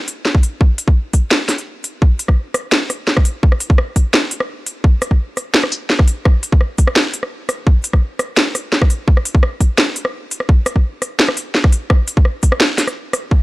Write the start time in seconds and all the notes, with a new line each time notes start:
0.08 closed hi-hat
0.25 snare
0.35 kick
0.43 closed hi-hat
0.61 kick
0.78 closed hi-hat
0.88 kick
1.13 kick, closed hi-hat
1.31 snare
1.49 snare, closed hi-hat
1.58 closed hi-hat
1.84 closed hi-hat
2.02 kick
2.19 closed hi-hat
2.28 kick, cross-stick
2.54 cross-stick, closed hi-hat
2.72 snare
2.90 cross-stick, closed hi-hat
3.07 snare
3.17 kick, cross-stick
3.25 closed hi-hat
3.43 kick
3.52 cross-stick
3.60 closed hi-hat
3.70 kick
3.78 cross-stick
3.96 kick, closed hi-hat
4.14 cross-stick, snare
4.31 closed hi-hat
4.40 cross-stick
4.67 closed hi-hat
4.84 kick
5.02 cross-stick, closed hi-hat
5.11 kick
5.37 cross-stick, closed hi-hat
5.54 snare
5.64 cross-stick
5.72 closed hi-hat
5.90 snare
5.99 kick, cross-stick
6.08 closed hi-hat
6.25 kick, cross-stick
6.43 closed hi-hat
6.52 kick
6.61 cross-stick
6.78 kick, closed hi-hat
6.87 cross-stick
6.96 snare
7.14 closed hi-hat
7.23 cross-stick
7.49 cross-stick, closed hi-hat
7.67 kick
7.84 closed hi-hat
7.93 kick, cross-stick
8.19 cross-stick, closed hi-hat
8.37 snare
8.55 cross-stick, closed hi-hat
8.72 snare
8.82 kick, cross-stick
8.90 closed hi-hat
9.08 kick
9.17 cross-stick
9.25 closed hi-hat
9.35 kick
9.43 cross-stick
9.60 kick, closed hi-hat
9.78 cross-stick, snare
9.96 closed hi-hat
10.05 cross-stick
10.31 closed hi-hat
10.40 cross-stick
10.49 kick
10.66 cross-stick, closed hi-hat
10.76 kick
11.02 cross-stick, closed hi-hat
11.19 snare
11.28 cross-stick
11.37 closed hi-hat
11.55 snare
11.64 kick, cross-stick
11.73 closed hi-hat
11.90 kick, cross-stick
12.08 closed hi-hat
12.17 kick
12.25 cross-stick
12.43 kick, closed hi-hat
12.52 cross-stick
12.60 snare
12.78 snare, closed hi-hat
12.88 cross-stick, closed hi-hat
13.13 cross-stick, closed hi-hat
13.31 kick, crash